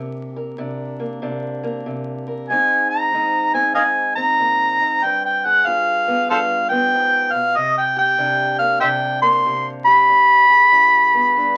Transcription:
0.00 0.57 C3 medium
0.00 0.98 A#3 medium
0.00 0.58 D4 medium
0.36 2.26 A#4 medium
0.58 1.21 C3 medium
0.58 1.22 D4 medium
1.00 1.62 A#3 medium
1.22 1.85 C3 medium
1.22 2.49 D4 medium
1.63 2.49 A#3 medium
1.86 2.49 C3 medium
2.28 2.47 A#4 medium
2.49 3.12 G#2 medium
2.49 5.01 G#3 medium
2.49 3.53 C4 medium
2.49 3.13 D#4 medium
2.49 2.87 G#5 medium
2.90 3.49 A#5 medium
3.13 3.74 G#2 medium
3.13 3.75 D#4 medium
3.54 4.16 C4 medium
3.54 3.74 G#5 medium
3.75 4.38 G#2 medium
3.75 5.00 D#4 medium
3.75 3.83 D#5 medium
3.75 3.83 F5 medium
3.75 4.13 G#5 medium
4.15 5.00 C4 medium
4.15 5.05 A#5 loud
4.39 4.80 A#2 medium
4.81 5.03 G#2 medium
5.03 5.65 G2 medium
5.03 5.24 G5 medium
5.25 5.47 G5 medium
5.45 7.55 G#4 medium
5.45 5.68 F#5 medium
5.66 6.29 G2 medium
5.66 6.29 F4 medium
5.66 6.30 F5 loud
6.08 6.70 B3 medium
6.30 6.93 G2 medium
6.30 7.54 F4 medium
6.30 6.39 A4 medium
6.30 6.37 C5 medium
6.30 6.68 F5 medium
6.69 7.54 B3 medium
6.69 7.33 G5 loud
6.94 7.33 G#2 medium
7.32 7.57 B2 medium
7.32 7.58 F5 medium
7.56 8.16 C3 medium
7.56 7.77 D#5 medium
7.78 7.97 G5 medium
7.96 9.86 G4 medium
7.96 8.56 G5 loud
8.18 8.80 C3 medium
8.18 8.81 D4 medium
8.59 9.21 A#3 medium
8.59 8.80 F5 medium
8.80 9.45 C3 medium
8.80 10.72 D4 medium
8.80 8.86 C5 medium
8.80 8.89 E5 medium
8.80 9.19 G5 medium
9.22 10.09 A#3 medium
9.22 9.67 C6 loud
9.46 10.09 C3 medium
9.84 10.49 G4 medium
9.84 11.57 B5 loud
10.08 10.71 G2 medium
10.49 11.57 G#4 medium
10.72 11.35 G2 medium
10.72 11.35 F4 medium
11.14 11.57 B3 medium
11.36 11.57 G2 medium
11.36 11.55 D4 medium

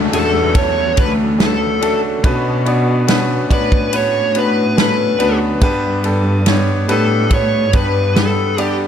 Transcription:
0.00 2.26 D3 medium
0.00 0.12 A3 loud
0.00 0.12 C#4 medium
0.00 0.13 D4 medium
0.00 0.13 F#4 medium
0.00 0.13 A4 loud
0.00 1.40 B4 medium
0.00 downlifter medium
0.12 0.93 E2 medium
0.12 0.52 A3 medium
0.12 0.53 C#4 medium
0.12 0.53 D4 medium
0.12 0.53 F#4 medium
0.12 0.53 A4 medium
0.12 0.57 A4 medium
0.12 ride medium
0.54 0.94 A3 medium
0.54 0.95 C#4 medium
0.54 0.95 D4 medium
0.54 0.95 A4 medium
0.54 0.99 C#5 medium
0.54 kick medium
0.54 ride medium
0.96 1.78 D2 loud
0.96 1.37 A3 medium
0.96 1.37 C#4 medium
0.96 1.37 D4 medium
0.96 1.37 F#4 medium
0.96 1.38 A4 medium
0.96 1.10 B4 medium
0.96 kick medium
0.96 ride medium
1.38 1.79 A3 medium
1.38 1.79 C#4 medium
1.38 1.80 D4 medium
1.38 1.80 F#4 medium
1.38 2.00 A4 medium
1.38 1.80 B4 medium
1.38 snare loud
1.38 ride medium
1.81 2.21 A3 medium
1.81 2.22 C#4 medium
1.81 2.22 D4 medium
1.81 2.22 F#4 medium
1.81 2.22 A4 medium
1.81 ride medium
2.23 3.47 B2 loud
2.23 3.47 B2 medium
2.23 2.64 B3 medium
2.23 2.64 C#4 loud
2.23 2.64 D4 medium
2.23 2.64 F#4 loud
2.23 2.65 B4 loud
2.23 kick loud
2.23 ride medium
2.65 3.06 B3 medium
2.65 3.06 D4 medium
2.65 3.07 F#4 medium
2.65 3.06 C#5 medium
2.65 3.07 D5 medium
2.65 ride soft
3.08 3.48 B3 medium
3.08 3.48 C#4 medium
3.08 3.49 D4 medium
3.08 3.49 F#4 medium
3.08 3.49 B4 loud
3.08 snare medium
3.08 ride medium
3.50 5.16 A2 medium
3.50 3.90 B3 medium
3.50 3.91 D4 medium
3.50 3.91 F#4 medium
3.50 3.95 B4 medium
3.50 3.91 C#5 medium
3.50 3.91 D5 medium
3.50 kick medium
3.50 ride medium
3.72 kick medium
3.93 4.33 B3 medium
3.93 4.33 C#4 medium
3.93 4.33 D4 medium
3.93 4.34 F#4 medium
3.93 4.34 B4 medium
3.93 4.38 C#5 loud
3.93 ride medium
4.35 4.75 B3 medium
4.35 4.75 C#4 medium
4.35 4.76 D4 medium
4.35 4.76 F#4 medium
4.35 4.76 B4 medium
4.35 4.79 B4 medium
4.35 ride medium
4.77 5.17 B3 medium
4.77 5.18 C#4 medium
4.77 5.18 D4 medium
4.77 5.18 F#4 medium
4.77 5.18 A4 medium
4.77 5.38 B4 medium
4.77 snare loud
4.77 ride medium
5.19 5.59 D2 medium
5.19 5.60 B3 medium
5.19 5.60 C#4 medium
5.19 5.60 D4 medium
5.19 5.60 F#4 medium
5.19 5.60 B4 medium
5.19 ride medium
5.61 6.85 G2 loud
5.61 6.85 G2 medium
5.61 6.02 G3 loud
5.61 6.02 B3 medium
5.61 6.02 D4 loud
5.61 6.03 G4 loud
5.61 6.03 B4 loud
5.61 kick loud
5.61 ride medium
6.04 6.44 G3 medium
6.04 6.44 B3 medium
6.04 6.45 D4 medium
6.04 6.45 G4 medium
6.04 6.45 A4 medium
6.04 ride medium
6.46 6.86 G3 medium
6.46 6.87 B3 medium
6.46 6.87 D4 medium
6.46 6.87 G4 medium
6.46 6.87 C#5 loud
6.46 snare loud
6.46 ride medium
6.88 7.73 A2 loud
6.88 7.28 G3 medium
6.88 7.29 B3 medium
6.88 7.29 D4 medium
6.88 7.29 G4 medium
6.88 7.34 A4 medium
6.88 7.29 B4 loud
6.88 ride medium
7.31 7.71 G3 medium
7.31 7.71 B3 medium
7.31 7.72 D4 medium
7.31 7.72 G4 medium
7.31 7.72 B4 medium
7.31 7.76 C#5 medium
7.31 kick medium
7.31 ride medium
7.73 8.54 G2 loud
7.73 8.13 G3 medium
7.73 8.13 B3 medium
7.73 8.14 D4 medium
7.73 8.14 G4 medium
7.73 8.14 B4 medium
7.73 8.17 B4 medium
7.73 kick loud
7.73 ride medium
8.15 8.55 G3 medium
8.15 8.55 B3 medium
8.15 8.56 D4 medium
8.15 8.56 G4 medium
8.15 8.62 A4 medium
8.15 8.56 B4 medium
8.15 snare loud
8.15 ride medium
8.57 8.88 G3 medium
8.57 8.88 B3 medium
8.57 8.88 D4 medium
8.57 8.88 G4 medium
8.57 8.88 D5 loud
8.57 ride medium
8.62 8.76 G4 medium

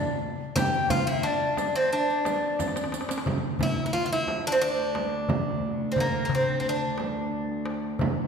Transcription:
0.00 0.19 D4 medium
0.00 0.24 D5 medium
0.23 darbuka ka soft
0.56 0.88 G4 loud
0.56 0.91 G5 medium
0.56 0.60 A5 medium
0.56 riq medium
0.56 darbuka dum medium
0.56 frame drum medium
0.72 riq soft
0.72 darbuka ka soft
0.90 1.07 F4 medium
0.90 1.10 F5 medium
0.90 riq soft
0.90 frame drum medium
0.90 darbuka dum medium
1.07 1.25 E4 medium
1.07 1.28 E5 medium
1.07 riq soft
1.07 darbuka ka soft
1.23 1.75 D4 medium
1.23 1.78 D5 medium
1.23 riq soft
1.23 darbuka ka soft
1.57 riq soft
1.57 darbuka tek medium
1.57 frame drum medium
1.76 1.92 C4 medium
1.76 1.93 C5 medium
1.91 2.90 D4 medium
1.91 1.99 E5 medium
1.91 riq soft
1.91 darbuka ka soft
1.98 2.91 D5 medium
2.09 riq soft
2.09 darbuka ka soft
2.25 riq soft
2.25 darbuka tek medium
2.25 frame drum medium
2.42 darbuka ka soft
2.59 riq medium
2.59 darbuka tek medium
2.59 frame drum medium
2.68 darbuka ka medium
2.76 riq medium
2.76 darbuka tek medium
2.84 darbuka ka medium
2.92 riq medium
2.92 darbuka tek medium
3.01 darbuka ka medium
3.09 riq medium
3.09 darbuka tek medium
3.18 darbuka ka medium
3.26 darbuka dum medium
3.26 frame drum medium
3.43 darbuka ka soft
3.59 3.85 E4 medium
3.59 darbuka dum medium
3.59 frame drum medium
3.86 3.91 E4 medium
3.93 4.05 F4 medium
4.06 4.12 F4 medium
4.13 4.47 E4 medium
4.28 darbuka tek medium
4.28 frame drum medium
4.47 4.54 D4 medium
4.52 4.60 C4 medium
4.62 6.03 D4 medium
4.62 darbuka ka soft
4.79 darbuka ka soft
4.95 darbuka tek medium
4.95 frame drum medium
5.11 darbuka ka soft
5.29 darbuka dum medium
5.29 frame drum medium
5.45 darbuka ka soft
5.62 darbuka ka soft
5.92 5.99 C4 medium
5.96 darbuka dum medium
5.96 frame drum medium
6.00 6.24 A#3 medium
6.13 darbuka ka soft
6.25 6.32 A#3 medium
6.29 darbuka dum medium
6.35 6.59 C4 medium
6.60 6.67 C4 medium
6.69 8.14 D4 medium
6.98 darbuka tek medium
6.98 frame drum medium
7.32 darbuka ka soft
7.49 darbuka ka soft
7.66 darbuka tek medium
7.83 darbuka ka soft
7.99 darbuka dum medium
7.99 frame drum loud
8.17 darbuka ka soft

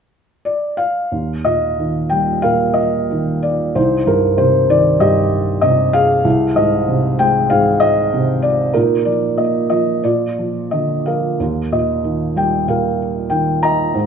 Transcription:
0.45 0.79 D5 medium
0.77 1.41 F5 medium
1.12 3.72 D#2 soft
1.45 2.43 A#2 soft
1.45 2.13 D#5 medium
1.79 3.07 D#3 soft
2.10 3.40 G3 soft
2.10 2.44 G5 medium
2.42 3.72 A#2 soft
2.42 3.72 A#4 soft
2.42 2.77 F5 medium
2.74 3.44 D#5 medium
3.11 3.74 D#3 soft
3.43 3.76 D5 medium
3.75 6.21 C2 soft
3.75 4.97 D#4 soft
3.75 4.05 C5 medium
4.06 4.99 G2 soft
4.06 4.39 A#4 medium
4.38 5.59 C3 soft
4.38 4.70 C5 medium
4.69 5.90 D#3 soft
4.69 5.02 D5 medium
5.00 6.21 G2 soft
5.00 6.21 G4 medium
5.00 5.60 D#5 medium
5.61 6.23 C3 soft
5.61 5.94 D#5 medium
5.93 7.16 G#4 medium
5.93 6.58 F5 medium
6.25 8.70 C2 medium
6.56 7.50 G#2 soft
6.56 7.21 D#5 medium
6.88 8.09 C3 soft
7.19 8.40 G#3 soft
7.19 7.51 G5 medium
7.50 8.71 G#2 soft
7.50 8.71 G#4 medium
7.50 7.79 F5 medium
7.80 8.45 D#5 medium
8.13 8.73 C3 soft
8.42 8.75 D5 medium
8.74 10.00 A#2 medium
8.74 10.00 D#4 soft
8.74 9.06 A#4 medium
9.05 9.69 F3 soft
9.05 9.38 D5 medium
9.38 10.02 A#3 soft
9.38 9.68 D#5 medium
9.70 10.03 F3 soft
9.70 10.01 D#5 medium
10.04 11.35 A#2 soft
10.04 11.36 F4 soft
10.04 10.68 D5 medium
10.39 11.06 F3 soft
10.71 11.38 D3 soft
10.71 11.07 D#5 soft
11.06 11.39 F3 soft
11.06 12.33 A#4 soft
11.06 11.74 F5 soft
11.40 13.91 D#2 soft
11.72 12.66 A#2 soft
11.72 12.39 D#5 medium
12.04 13.27 D#3 soft
12.36 13.59 G3 soft
12.36 12.69 G5 medium
12.67 13.90 A#2 soft
12.67 13.91 A#4 soft
12.67 12.97 F5 medium
13.30 13.92 D#3 soft
13.30 13.63 G5 medium
13.63 14.06 D#5 soft
13.63 14.06 A#5 medium
13.94 14.06 G#2 soft

